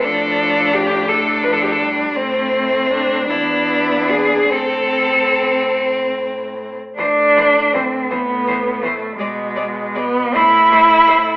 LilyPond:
<<
  \new Staff \with { instrumentName = "Cello" } { \time 6/8 \key a \minor \tempo 4. = 53 a'4 g'8 a'8 b'32 a'32 g'32 a'32 r8 | c'4 d'8 e'4 gis'8 | a'4. r4. | c''8 c''8 c''8 c''8 c''8 c''8 |
d''8 d''8 d''8 c''8 c''8 c''8 | }
  \new Staff \with { instrumentName = "Cello" } { \time 6/8 \key a \minor f4. a8 f8 g8 | a4. b4. | c'2~ c'16 r8. | d'4 c'8 b4 a8 |
gis4 b8 e'4. | }
  \new Staff \with { instrumentName = "Cello" } { \clef bass \time 6/8 \key a \minor d'4. d'4. | c'4. d'4. | c'2~ c'8 r8 | e8 e8 e8 e8 e8 e8 |
gis8 gis8 gis8 a8 a8 a8 | }
  \new Staff \with { instrumentName = "Cello" } { \clef bass \time 6/8 \key a \minor a,2. | a,4. e,4. | a,2~ a,8 r8 | a,4. a,4. |
b,4. a,4. | }
>>